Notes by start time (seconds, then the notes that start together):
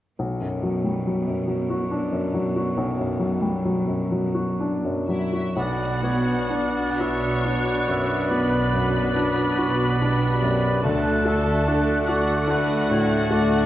0.19 B1 B2
0.41 F#2
0.63 F#3
0.84 G3
1.07 F#3
1.27 F#2
1.47 F#3
1.70 F#4
1.91 D4
2.12 F#2
2.34 F#3
2.56 F#4
2.77 B1
2.99 F#2
3.19 F#3
3.42 G3
3.65 F#3
3.88 F#2
4.12 F#3
4.34 F#4
4.60 D4
4.84 F#2
5.08 F#3 E4 E5
5.33 F#4
5.56 B1 B2 B3 D4 F#4 D5 F#5 F#6
6.03 B3 D4 F#4 C#5
6.50 D4
6.55 D5
6.99 B1 B2 F#4 C#5 E5 C#6
7.44 D4 F#4 F#5
7.88 F#2 E5
8.29 B1 B2 B3 D4 F#4 B4 D5 B5
8.72 F#2 D4 F#4
9.16 D4
9.56 B1 B2 F#4
9.98 D4 F#4 G4
10.02 D4
10.42 F#2
10.83 D2 A3 D4 F#4 A4 D5 F#5 A5 F#6
11.24 A3 D4 F#4 E5
11.67 D4 F#5
12.08 D2 D4 F#4 A4 D5 F#5
12.48 D4 F#4 B4
12.90 A2 C#5
13.31 D2 A3 D5